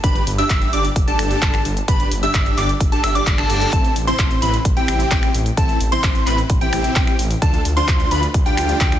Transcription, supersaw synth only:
0.04 D4 G4 B4
0.38 D4 G4 E5
0.73 D4 G4 D5
1.07 D4 G4 A4
1.88 D4 G4 B4
2.23 D4 G4 E5
2.57 D4 G4 D5
2.92 D4 G4 A4
3.03 D4 G4 E5
3.15 D4 G4 D5
3.38 D4 G4 A4
3.73 C4 E4 A4
4.07 C4 E4 C5
4.42 C4 E4 B4
4.77 C4 E4 G4
5.11 C4
5.57 C4 E4 A4
5.92 C4 E4 C5
6.27 C4 E4 B4
6.61 C4 E4 G4
6.96 C4
7.42 D4 F4 A4
7.77 D4 F4 C5
8.11 D4 F4 B4
8.46 D4 F4 G4

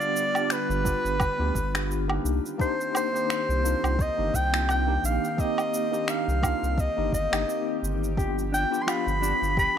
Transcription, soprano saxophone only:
Already playing: D5
0.52 B4
2.61 C5
2.96 C5
4.01 D#5
4.35 G5
4.71 G5
5.05 F5
5.40 D#5
6.10 F5
6.80 D#5
7.14 D#5
8.54 G5
8.82 C6
8.89 B5
9.59 B5

